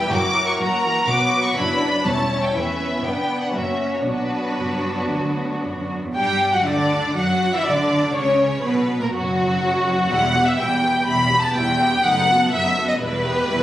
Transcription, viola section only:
0.00 0.10 G3 medium
0.00 0.57 E4 soft
0.11 0.58 F#3 soft
0.59 0.67 F#3 soft
0.59 1.07 A#3 soft
0.84 1.07 E3 soft
1.07 1.54 F#3 soft
1.07 1.55 B3 soft
1.56 2.04 F#3 soft
1.56 2.05 D4 soft
2.05 2.55 G3 soft
2.05 2.54 E4 soft
2.55 2.79 A3 soft
2.55 3.03 E4 soft
2.80 3.54 B3 soft
3.04 3.54 D4 soft
3.54 4.06 A#3 soft
3.54 4.06 C#4 soft
4.06 5.95 F#3 soft
4.06 5.92 B3 soft
6.16 6.51 G4 medium
6.53 6.66 F#4 soft
6.66 7.16 D4 medium
7.17 7.53 F#4 medium
7.54 7.66 E4 soft
7.67 8.16 D4 medium
8.16 8.64 C#4 medium
8.64 9.00 B3 medium
9.00 9.13 A#3 medium
9.13 10.08 F#3 medium
10.10 10.33 G3 soft
10.10 10.33 E4 soft
10.35 10.59 B3 soft
10.35 10.59 G4 soft
10.59 10.83 G3 soft
10.59 10.83 E4 soft
10.83 11.07 B3 soft
10.83 11.07 G4 soft
11.07 11.29 G3 medium
11.07 11.29 E4 soft
11.31 11.55 B3 soft
11.31 11.55 G4 medium
11.55 11.79 G3 soft
11.55 11.79 E4 soft
11.80 12.04 B3 soft
11.80 12.04 G4 medium
12.04 12.26 A3 medium
12.04 12.26 D#4 medium
12.28 12.52 B3 medium
12.28 12.52 F#4 soft
12.52 12.76 A3 soft
12.52 12.76 D#4 soft
12.76 13.00 B3 soft
12.76 13.00 F#4 soft
13.00 13.22 G3 medium
13.00 13.22 E4 soft
13.24 13.48 B3 medium
13.24 13.48 G4 soft
13.47 13.63 G3 soft
13.47 13.63 E4 medium

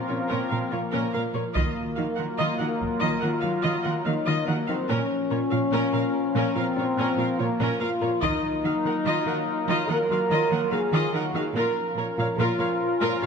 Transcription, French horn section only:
0.00 0.74 C4 medium
0.73 1.39 A#3 medium
1.56 3.19 A#3 medium
3.23 4.06 F4 medium
4.04 4.46 D#4 medium
4.46 4.68 A#3 medium
4.69 4.89 C4 medium
4.89 6.56 C#4 medium
6.57 7.40 C4 medium
7.39 7.68 A#3 medium
7.80 8.21 F4 medium
8.22 9.89 D#4 medium
9.89 10.72 A#4 medium
10.72 11.13 G#4 medium
11.14 11.35 F#4 medium
11.36 11.56 G#4 medium
11.55 12.37 A#4 medium
12.39 13.26 F4 medium

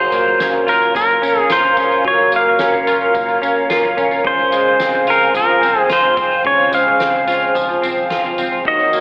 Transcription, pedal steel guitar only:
0.00 0.69 C5 loud
0.69 0.95 A#4 medium
0.96 1.40 A#4 medium
1.40 1.52 G#4 medium
1.52 2.07 C5 medium
2.08 2.32 C#5 loud
2.36 3.95 F5 loud
4.27 5.11 C5 loud
5.10 5.35 A#4 medium
5.37 5.81 A#4 medium
5.81 5.92 G#4 medium
5.93 6.46 C5 loud
6.47 6.74 C#5 loud
6.75 8.35 F5 loud
8.68 9.00 D#5 medium

